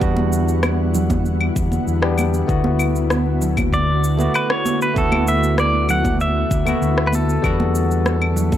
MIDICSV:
0, 0, Header, 1, 6, 480
1, 0, Start_track
1, 0, Tempo, 618557
1, 11, Time_signature, 4, 2, 24, 8
1, 6654, End_track
2, 0, Start_track
2, 0, Title_t, "Pedal steel guitar"
2, 0, Program_c, 0, 26
2, 2899, Note_on_c, 0, 74, 90
2, 3376, Note_off_c, 0, 74, 0
2, 3379, Note_on_c, 0, 71, 89
2, 3489, Note_off_c, 0, 71, 0
2, 3506, Note_on_c, 0, 73, 90
2, 3740, Note_off_c, 0, 73, 0
2, 3743, Note_on_c, 0, 71, 82
2, 3859, Note_off_c, 0, 71, 0
2, 3863, Note_on_c, 0, 69, 95
2, 4101, Note_on_c, 0, 76, 99
2, 4104, Note_off_c, 0, 69, 0
2, 4340, Note_off_c, 0, 76, 0
2, 4343, Note_on_c, 0, 74, 97
2, 4561, Note_off_c, 0, 74, 0
2, 4582, Note_on_c, 0, 78, 93
2, 4818, Note_off_c, 0, 78, 0
2, 4821, Note_on_c, 0, 76, 97
2, 5489, Note_on_c, 0, 71, 74
2, 5503, Note_off_c, 0, 76, 0
2, 5536, Note_off_c, 0, 71, 0
2, 5548, Note_on_c, 0, 69, 87
2, 6654, Note_off_c, 0, 69, 0
2, 6654, End_track
3, 0, Start_track
3, 0, Title_t, "Tine electric piano"
3, 0, Program_c, 1, 4
3, 0, Control_c, 1, 64, 127
3, 0, Note_on_c, 1, 55, 90
3, 0, Note_on_c, 1, 59, 74
3, 0, Note_on_c, 1, 62, 74
3, 0, Note_on_c, 1, 66, 91
3, 5, Note_off_c, 1, 59, 0
3, 5, Note_on_c, 1, 59, 81
3, 14, Note_off_c, 1, 62, 0
3, 14, Note_on_c, 1, 62, 76
3, 22, Note_off_c, 1, 66, 0
3, 22, Note_on_c, 1, 66, 96
3, 1296, Note_off_c, 1, 55, 0
3, 1301, Note_off_c, 1, 59, 0
3, 1305, Note_off_c, 1, 62, 0
3, 1309, Note_off_c, 1, 66, 0
3, 1567, Note_on_c, 1, 55, 93
3, 1569, Note_on_c, 1, 59, 85
3, 1575, Note_on_c, 1, 62, 84
3, 1580, Note_on_c, 1, 67, 97
3, 1899, Note_off_c, 1, 55, 0
3, 1901, Note_off_c, 1, 59, 0
3, 1904, Note_off_c, 1, 62, 0
3, 1906, Note_off_c, 1, 67, 0
3, 1915, Note_on_c, 1, 57, 89
3, 1923, Note_on_c, 1, 59, 82
3, 1932, Note_on_c, 1, 64, 81
3, 1941, Note_on_c, 1, 66, 96
3, 1942, Control_c, 1, 64, 0
3, 2100, Control_c, 1, 64, 127
3, 3216, Note_off_c, 1, 57, 0
3, 3220, Note_off_c, 1, 59, 0
3, 3224, Note_off_c, 1, 64, 0
3, 3229, Note_off_c, 1, 66, 0
3, 3240, Note_on_c, 1, 57, 82
3, 3249, Note_on_c, 1, 59, 79
3, 3257, Note_on_c, 1, 64, 73
3, 3267, Note_on_c, 1, 66, 93
3, 3816, Note_off_c, 1, 57, 0
3, 3821, Note_off_c, 1, 59, 0
3, 3825, Note_off_c, 1, 64, 0
3, 3830, Note_off_c, 1, 66, 0
3, 3835, Note_on_c, 1, 57, 88
3, 3845, Note_on_c, 1, 59, 77
3, 3854, Note_on_c, 1, 64, 80
3, 3864, Note_on_c, 1, 66, 92
3, 5136, Note_off_c, 1, 57, 0
3, 5141, Note_off_c, 1, 59, 0
3, 5146, Note_off_c, 1, 64, 0
3, 5150, Note_off_c, 1, 66, 0
3, 5162, Note_on_c, 1, 57, 85
3, 5171, Note_on_c, 1, 59, 78
3, 5180, Note_on_c, 1, 64, 81
3, 5188, Note_on_c, 1, 66, 101
3, 5737, Note_off_c, 1, 57, 0
3, 5742, Note_off_c, 1, 59, 0
3, 5746, Note_off_c, 1, 64, 0
3, 5750, Note_off_c, 1, 66, 0
3, 5758, Note_on_c, 1, 55, 91
3, 5767, Note_on_c, 1, 59, 85
3, 5776, Note_on_c, 1, 62, 77
3, 5780, Control_c, 1, 64, 0
3, 5785, Note_on_c, 1, 66, 102
3, 5896, Control_c, 1, 64, 127
3, 6654, Note_off_c, 1, 55, 0
3, 6654, Note_off_c, 1, 59, 0
3, 6654, Note_off_c, 1, 62, 0
3, 6654, Note_off_c, 1, 66, 0
3, 6654, End_track
4, 0, Start_track
4, 0, Title_t, "Ambient pad"
4, 0, Program_c, 2, 92
4, 0, Note_on_c, 2, 50, 79
4, 0, Note_on_c, 2, 55, 73
4, 0, Note_on_c, 2, 59, 72
4, 0, Note_on_c, 2, 64, 74
4, 0, Note_on_c, 2, 78, 85
4, 1901, Note_off_c, 2, 55, 0
4, 1901, Note_off_c, 2, 78, 0
4, 1924, Note_on_c, 2, 66, 90
4, 1925, Note_on_c, 2, 57, 69
4, 5737, Note_off_c, 2, 57, 0
4, 5740, Note_off_c, 2, 64, 0
4, 5741, Note_off_c, 2, 59, 0
4, 5766, Note_on_c, 2, 59, 76
4, 5767, Note_on_c, 2, 55, 77
4, 5767, Note_on_c, 2, 64, 79
4, 6654, Note_off_c, 2, 50, 0
4, 6654, Note_off_c, 2, 55, 0
4, 6654, Note_off_c, 2, 59, 0
4, 6654, Note_off_c, 2, 64, 0
4, 6654, Note_off_c, 2, 66, 0
4, 6654, End_track
5, 0, Start_track
5, 0, Title_t, "Fingered electric bass"
5, 0, Program_c, 3, 33
5, 11, Note_on_c, 3, 40, 92
5, 1145, Note_off_c, 3, 40, 0
5, 1211, Note_on_c, 3, 40, 76
5, 1368, Note_off_c, 3, 40, 0
5, 1452, Note_on_c, 3, 40, 89
5, 1865, Note_off_c, 3, 40, 0
5, 1931, Note_on_c, 3, 38, 85
5, 3304, Note_off_c, 3, 38, 0
5, 3852, Note_on_c, 3, 38, 92
5, 4985, Note_off_c, 3, 38, 0
5, 5051, Note_on_c, 3, 38, 77
5, 5208, Note_off_c, 3, 38, 0
5, 5291, Note_on_c, 3, 38, 92
5, 5704, Note_off_c, 3, 38, 0
5, 5772, Note_on_c, 3, 40, 100
5, 6654, Note_off_c, 3, 40, 0
5, 6654, End_track
6, 0, Start_track
6, 0, Title_t, "Drums"
6, 11, Note_on_c, 9, 36, 116
6, 11, Note_on_c, 9, 82, 31
6, 89, Note_off_c, 9, 36, 0
6, 89, Note_off_c, 9, 82, 0
6, 129, Note_on_c, 9, 63, 86
6, 206, Note_off_c, 9, 63, 0
6, 253, Note_on_c, 9, 82, 76
6, 331, Note_off_c, 9, 82, 0
6, 374, Note_on_c, 9, 82, 46
6, 452, Note_off_c, 9, 82, 0
6, 488, Note_on_c, 9, 37, 74
6, 488, Note_on_c, 9, 75, 66
6, 490, Note_on_c, 9, 63, 59
6, 492, Note_on_c, 9, 82, 30
6, 566, Note_off_c, 9, 37, 0
6, 566, Note_off_c, 9, 75, 0
6, 568, Note_off_c, 9, 63, 0
6, 569, Note_off_c, 9, 82, 0
6, 733, Note_on_c, 9, 64, 69
6, 733, Note_on_c, 9, 82, 80
6, 810, Note_off_c, 9, 82, 0
6, 811, Note_off_c, 9, 64, 0
6, 854, Note_on_c, 9, 36, 94
6, 854, Note_on_c, 9, 82, 43
6, 856, Note_on_c, 9, 63, 89
6, 931, Note_off_c, 9, 36, 0
6, 932, Note_off_c, 9, 82, 0
6, 934, Note_off_c, 9, 63, 0
6, 973, Note_on_c, 9, 82, 30
6, 1051, Note_off_c, 9, 82, 0
6, 1091, Note_on_c, 9, 75, 69
6, 1168, Note_off_c, 9, 75, 0
6, 1211, Note_on_c, 9, 36, 107
6, 1214, Note_on_c, 9, 82, 73
6, 1289, Note_off_c, 9, 36, 0
6, 1292, Note_off_c, 9, 82, 0
6, 1333, Note_on_c, 9, 63, 64
6, 1337, Note_on_c, 9, 82, 40
6, 1410, Note_off_c, 9, 63, 0
6, 1415, Note_off_c, 9, 82, 0
6, 1455, Note_on_c, 9, 82, 33
6, 1533, Note_off_c, 9, 82, 0
6, 1571, Note_on_c, 9, 37, 77
6, 1649, Note_off_c, 9, 37, 0
6, 1689, Note_on_c, 9, 75, 65
6, 1693, Note_on_c, 9, 82, 76
6, 1697, Note_on_c, 9, 63, 81
6, 1767, Note_off_c, 9, 75, 0
6, 1771, Note_off_c, 9, 82, 0
6, 1775, Note_off_c, 9, 63, 0
6, 1814, Note_on_c, 9, 82, 43
6, 1892, Note_off_c, 9, 82, 0
6, 1932, Note_on_c, 9, 36, 114
6, 1932, Note_on_c, 9, 82, 33
6, 2009, Note_off_c, 9, 36, 0
6, 2009, Note_off_c, 9, 82, 0
6, 2050, Note_on_c, 9, 63, 93
6, 2128, Note_off_c, 9, 63, 0
6, 2167, Note_on_c, 9, 75, 69
6, 2171, Note_on_c, 9, 82, 74
6, 2245, Note_off_c, 9, 75, 0
6, 2249, Note_off_c, 9, 82, 0
6, 2294, Note_on_c, 9, 82, 42
6, 2372, Note_off_c, 9, 82, 0
6, 2408, Note_on_c, 9, 37, 68
6, 2412, Note_on_c, 9, 82, 33
6, 2416, Note_on_c, 9, 63, 58
6, 2486, Note_off_c, 9, 37, 0
6, 2490, Note_off_c, 9, 82, 0
6, 2493, Note_off_c, 9, 63, 0
6, 2651, Note_on_c, 9, 64, 71
6, 2651, Note_on_c, 9, 82, 77
6, 2728, Note_off_c, 9, 64, 0
6, 2729, Note_off_c, 9, 82, 0
6, 2771, Note_on_c, 9, 75, 69
6, 2774, Note_on_c, 9, 36, 97
6, 2775, Note_on_c, 9, 82, 41
6, 2780, Note_on_c, 9, 63, 79
6, 2849, Note_off_c, 9, 75, 0
6, 2851, Note_off_c, 9, 36, 0
6, 2852, Note_off_c, 9, 82, 0
6, 2858, Note_off_c, 9, 63, 0
6, 2891, Note_on_c, 9, 36, 52
6, 2894, Note_on_c, 9, 82, 29
6, 2969, Note_off_c, 9, 36, 0
6, 2972, Note_off_c, 9, 82, 0
6, 3135, Note_on_c, 9, 82, 70
6, 3212, Note_off_c, 9, 82, 0
6, 3249, Note_on_c, 9, 63, 62
6, 3258, Note_on_c, 9, 82, 41
6, 3326, Note_off_c, 9, 63, 0
6, 3336, Note_off_c, 9, 82, 0
6, 3370, Note_on_c, 9, 75, 66
6, 3374, Note_on_c, 9, 82, 32
6, 3448, Note_off_c, 9, 75, 0
6, 3451, Note_off_c, 9, 82, 0
6, 3492, Note_on_c, 9, 37, 77
6, 3570, Note_off_c, 9, 37, 0
6, 3613, Note_on_c, 9, 63, 85
6, 3614, Note_on_c, 9, 82, 68
6, 3691, Note_off_c, 9, 63, 0
6, 3692, Note_off_c, 9, 82, 0
6, 3736, Note_on_c, 9, 82, 42
6, 3814, Note_off_c, 9, 82, 0
6, 3852, Note_on_c, 9, 36, 108
6, 3853, Note_on_c, 9, 82, 30
6, 3929, Note_off_c, 9, 36, 0
6, 3931, Note_off_c, 9, 82, 0
6, 3972, Note_on_c, 9, 75, 77
6, 3975, Note_on_c, 9, 63, 93
6, 4050, Note_off_c, 9, 75, 0
6, 4053, Note_off_c, 9, 63, 0
6, 4094, Note_on_c, 9, 82, 72
6, 4171, Note_off_c, 9, 82, 0
6, 4216, Note_on_c, 9, 82, 40
6, 4294, Note_off_c, 9, 82, 0
6, 4329, Note_on_c, 9, 63, 65
6, 4330, Note_on_c, 9, 37, 67
6, 4334, Note_on_c, 9, 82, 30
6, 4407, Note_off_c, 9, 63, 0
6, 4408, Note_off_c, 9, 37, 0
6, 4412, Note_off_c, 9, 82, 0
6, 4569, Note_on_c, 9, 75, 78
6, 4573, Note_on_c, 9, 82, 67
6, 4575, Note_on_c, 9, 64, 65
6, 4647, Note_off_c, 9, 75, 0
6, 4650, Note_off_c, 9, 82, 0
6, 4652, Note_off_c, 9, 64, 0
6, 4691, Note_on_c, 9, 63, 74
6, 4694, Note_on_c, 9, 36, 96
6, 4695, Note_on_c, 9, 82, 40
6, 4768, Note_off_c, 9, 63, 0
6, 4771, Note_off_c, 9, 36, 0
6, 4772, Note_off_c, 9, 82, 0
6, 4813, Note_on_c, 9, 82, 30
6, 4890, Note_off_c, 9, 82, 0
6, 5052, Note_on_c, 9, 36, 102
6, 5053, Note_on_c, 9, 82, 72
6, 5129, Note_off_c, 9, 36, 0
6, 5130, Note_off_c, 9, 82, 0
6, 5172, Note_on_c, 9, 63, 61
6, 5172, Note_on_c, 9, 75, 68
6, 5176, Note_on_c, 9, 82, 38
6, 5250, Note_off_c, 9, 63, 0
6, 5250, Note_off_c, 9, 75, 0
6, 5254, Note_off_c, 9, 82, 0
6, 5295, Note_on_c, 9, 82, 30
6, 5372, Note_off_c, 9, 82, 0
6, 5414, Note_on_c, 9, 37, 72
6, 5491, Note_off_c, 9, 37, 0
6, 5530, Note_on_c, 9, 63, 70
6, 5535, Note_on_c, 9, 82, 72
6, 5607, Note_off_c, 9, 63, 0
6, 5612, Note_off_c, 9, 82, 0
6, 5658, Note_on_c, 9, 82, 40
6, 5736, Note_off_c, 9, 82, 0
6, 5772, Note_on_c, 9, 36, 109
6, 5772, Note_on_c, 9, 75, 73
6, 5776, Note_on_c, 9, 82, 29
6, 5850, Note_off_c, 9, 36, 0
6, 5850, Note_off_c, 9, 75, 0
6, 5854, Note_off_c, 9, 82, 0
6, 5896, Note_on_c, 9, 63, 85
6, 5974, Note_off_c, 9, 63, 0
6, 6015, Note_on_c, 9, 82, 71
6, 6093, Note_off_c, 9, 82, 0
6, 6139, Note_on_c, 9, 82, 43
6, 6217, Note_off_c, 9, 82, 0
6, 6252, Note_on_c, 9, 63, 60
6, 6254, Note_on_c, 9, 37, 74
6, 6258, Note_on_c, 9, 82, 29
6, 6329, Note_off_c, 9, 63, 0
6, 6331, Note_off_c, 9, 37, 0
6, 6335, Note_off_c, 9, 82, 0
6, 6376, Note_on_c, 9, 75, 77
6, 6453, Note_off_c, 9, 75, 0
6, 6491, Note_on_c, 9, 64, 69
6, 6495, Note_on_c, 9, 82, 76
6, 6568, Note_off_c, 9, 64, 0
6, 6572, Note_off_c, 9, 82, 0
6, 6612, Note_on_c, 9, 63, 81
6, 6614, Note_on_c, 9, 36, 93
6, 6616, Note_on_c, 9, 82, 41
6, 6654, Note_off_c, 9, 36, 0
6, 6654, Note_off_c, 9, 63, 0
6, 6654, Note_off_c, 9, 82, 0
6, 6654, End_track
0, 0, End_of_file